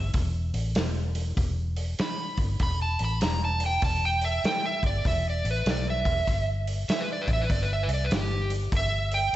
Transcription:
Already playing: fingered electric bass G1, electric slide guitar E5
0.14 fingered electric bass E1, kick, open hi-hat
0.54 fingered electric bass A1, open hi-hat
0.75 fingered electric bass E1, snare, open hi-hat
1.15 open hi-hat
1.36 fingered electric bass E1, kick, open hi-hat
1.76 open hi-hat
1.99 electric slide guitar B5, muted fingered electric bass stroke, snare, open hi-hat
2.37 fingered electric bass G1, kick, open hi-hat
2.60 fingered electric bass E1, electric slide guitar B5, kick, open hi-hat
2.82 electric slide guitar A5
2.99 fingered electric bass A1, open hi-hat
3.05 electric slide guitar B5
3.21 fingered electric bass E1, electric slide guitar A#5, snare, open hi-hat
3.45 electric slide guitar A5
3.60 open hi-hat
3.66 electric slide guitar G5
3.82 fingered electric bass E1, electric slide guitar A5, kick, open hi-hat
4.05 electric slide guitar G5
4.21 electric slide guitar E5, open hi-hat
4.44 electric slide guitar G5, muted fingered electric bass stroke, snare, open hi-hat
4.66 electric slide guitar E5
4.83 fingered electric bass G1, electric slide guitar D5, kick, open hi-hat
5.05 fingered electric bass E1, electric slide guitar E5, kick, open hi-hat
5.30 electric slide guitar D5
5.44 fingered electric bass A1, open hi-hat
5.51 electric slide guitar B4
5.66 fingered electric bass B1, snare, open hi-hat
5.70 electric slide guitar D5
5.90 electric slide guitar E5
6.05 fingered electric bass E1, kick, open hi-hat
6.27 fingered electric bass G1, kick, open hi-hat
6.67 open hi-hat
6.88 electric slide guitar E5, muted fingered electric bass stroke, snare, open hi-hat
7.01 electric slide guitar B4
7.13 electric slide guitar D5
7.22 electric slide guitar B4
7.27 fingered electric bass A1, kick, open hi-hat
7.33 electric slide guitar E5
7.42 electric slide guitar B4
7.50 fingered electric bass G1, electric slide guitar D5, kick, open hi-hat
7.62 electric slide guitar B4
7.73 electric slide guitar E5
7.83 electric slide guitar B4
7.88 fingered electric bass C2, open hi-hat
7.94 electric slide guitar D5
8.04 electric slide guitar B4
8.11 fingered electric bass G1, electric slide guitar G4, snare, open hi-hat
8.50 open hi-hat
8.72 fingered electric bass G1, kick, open hi-hat
8.77 electric slide guitar E5
9.11 electric slide guitar G5, open hi-hat

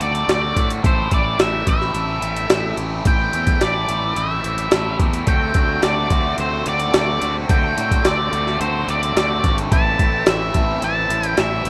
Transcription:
0.00 fingered electric bass D2, overdriven electric guitar D3 A3 C4 F#4, lead electric guitar D5, closed hi-hat
0.15 closed hi-hat
0.27 fingered electric bass D2, overdriven electric guitar D3 A3 C4 F#4, snare, closed hi-hat
0.31 lead electric guitar D5
0.54 fingered electric bass A2, overdriven electric guitar D3 A3 C4 F#4, kick, closed hi-hat
0.70 closed hi-hat
0.82 fingered electric bass A1, overdriven electric guitar A2 E3 A3 C4 E4, lead electric guitar C5, kick, closed hi-hat
1.09 fingered electric bass A1, overdriven electric guitar A2 E3 A3 C4 E4, kick, closed hi-hat
1.14 lead electric guitar D5
1.38 fingered electric bass A1, overdriven electric guitar A2 E3 A3 C4 E4, lead electric guitar E5, snare, closed hi-hat
1.65 fingered electric bass A1, overdriven electric guitar A2 E3 A3 C4 E4, kick, closed hi-hat
1.69 lead electric guitar E5
1.82 snare
1.92 fingered electric bass A1, overdriven electric guitar A2 E3 A3 C4 E4, closed hi-hat
2.20 fingered electric bass A1, overdriven electric guitar A2 E3 A3 C4 E4, closed hi-hat
2.36 closed hi-hat
2.48 fingered electric bass A1, overdriven electric guitar A2 E3 A3 C4 E4, snare, closed hi-hat
2.76 fingered electric bass A1, overdriven electric guitar A2 E3 A3 C4 E4, closed hi-hat
3.04 fingered electric bass A1, overdriven electric guitar A2 E3 A3 C4 E4, lead electric guitar G5, kick, closed hi-hat
3.32 fingered electric bass E2, overdriven electric guitar A2 E3 A3 C4 E4, closed hi-hat
3.47 kick, closed hi-hat
3.60 fingered electric bass A1, overdriven electric guitar A2 E3 A3 C4 E4, lead electric guitar D5, snare, closed hi-hat
3.87 fingered electric bass A1, overdriven electric guitar A2 E3 A3 C4 E4, closed hi-hat
4.15 fingered electric bass A1, overdriven electric guitar A2 E3 A3 C4 E4, lead electric guitar E5, closed hi-hat
4.43 fingered electric bass A1, overdriven electric guitar A2 E3 A3 C4 E4, closed hi-hat
4.58 closed hi-hat
4.71 fingered electric bass A1, overdriven electric guitar A2 E3 A3 C4 E4, snare, closed hi-hat
4.98 fingered electric bass E2, overdriven electric guitar A2 E3 A3 C4 E4, kick, closed hi-hat
5.13 closed hi-hat
5.26 fingered electric bass D2, overdriven electric guitar D3 A3 C4 F#4 A4, lead electric guitar G5, kick, closed hi-hat
5.53 fingered electric bass D2, overdriven electric guitar D3 A3 C4 F#4 A4, kick, closed hi-hat
5.82 fingered electric bass D2, overdriven electric guitar D3 A3 C4 F#4 A4, lead electric guitar D5, snare, closed hi-hat
6.09 fingered electric bass D2, overdriven electric guitar D3 A3 C4 F#4 A4, kick, closed hi-hat
6.37 fingered electric bass D2, overdriven electric guitar D3 A3 C4 F#4 A4, lead electric guitar C5, closed hi-hat
6.66 fingered electric bass D2, overdriven electric guitar D3 A3 C4 F#4 A4, lead electric guitar D5, closed hi-hat
6.80 closed hi-hat
6.92 fingered electric bass D2, overdriven electric guitar D3 A3 C4 F#4 A4, snare, closed hi-hat
6.97 lead electric guitar D5
7.20 fingered electric bass D2, overdriven electric guitar D3 A3 C4 F#4, closed hi-hat
7.24 overdriven electric guitar A4
7.48 fingered electric bass D2, overdriven electric guitar D3 A3 C4 F#4, lead electric guitar G5, kick, closed hi-hat
7.52 overdriven electric guitar A4
7.75 fingered electric bass A2, overdriven electric guitar D3 A3 C4 F#4 A4, closed hi-hat
7.91 kick, closed hi-hat
8.03 fingered electric bass D2, overdriven electric guitar D3 A3 C4 F#4, lead electric guitar D5, snare, closed hi-hat
8.07 overdriven electric guitar A4
8.31 fingered electric bass D2, overdriven electric guitar D3 A3 C4 F#4 A4, closed hi-hat
8.47 snare
8.59 fingered electric bass D2, overdriven electric guitar D3 A3 C4 F#4 A4, lead electric guitar C5, closed hi-hat
8.87 fingered electric bass D2, overdriven electric guitar D3 A3 C4 F#4 A4, lead electric guitar D5, closed hi-hat
9.03 closed hi-hat
9.15 fingered electric bass D2, overdriven electric guitar D3 A3 C4 F#4 A4, lead electric guitar D5, snare, closed hi-hat
9.43 fingered electric bass G#1, overdriven electric guitar D3 A3 C4 F#4 A4, kick, closed hi-hat
9.58 closed hi-hat
9.70 fingered electric bass A1, overdriven electric guitar A2 E3 A3 C4 E4, lead electric guitar A5, kick, closed hi-hat
9.74 overdriven electric guitar A4
9.99 fingered electric bass A1, overdriven electric guitar A2 E3 A3 C4 E4 A4, kick, closed hi-hat
10.26 fingered electric bass A1, overdriven electric guitar A2 E3 A3 C4 E4 A4, lead electric guitar E5, snare, closed hi-hat
10.53 fingered electric bass A1, overdriven electric guitar A2 E3 A3 C4 E4 A4, kick, closed hi-hat
10.81 fingered electric bass A1, overdriven electric guitar A2 E3 A3 C4 E4 A4, lead electric guitar A5, closed hi-hat
11.08 fingered electric bass A1, overdriven electric guitar A2 E3 A3 C4 E4 A4, closed hi-hat
11.23 closed hi-hat
11.28 lead electric guitar G5
11.36 fingered electric bass A1, overdriven electric guitar A2 E3 A3 C4 E4 A4, lead electric guitar E5, snare, closed hi-hat
11.64 fingered electric bass A1, overdriven electric guitar A2 E3 A3 C4 E4, closed hi-hat

